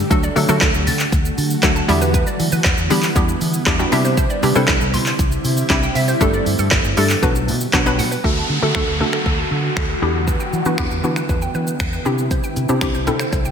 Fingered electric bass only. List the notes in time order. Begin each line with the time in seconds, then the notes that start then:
0.11 D2
0.36 D3
0.49 D3
0.62 D2
0.74 D2
0.87 D3
1.12 D2
1.38 D3
1.63 D2
1.89 E2
2.40 E3
2.52 E3
2.65 E2
2.78 E2
2.91 E3
3.16 E2
3.41 E3
3.67 E2
3.92 C3
4.43 C3
4.56 C3
4.68 C2
4.81 C2
4.94 C3
5.19 C2
5.45 C3
5.70 C2
5.95 C3
6.21 G1
6.46 G2
6.59 G2
6.72 G1
6.84 G1
6.97 G2
7.23 B1
7.48 B2
7.73 B1
7.99 B2
8.24 D2
8.49 D3
8.62 D3
8.75 D2
8.88 D2
9.00 D3
9.26 D2
9.51 D3
9.77 D2
10.02 E2
10.53 E3
10.66 E3
10.79 E2
10.91 E2
11.04 E3
11.29 E2
11.55 E3
11.80 E2
12.06 C3
12.56 C3
12.69 C3
12.82 C2
12.95 C2
13.07 C3
13.33 C2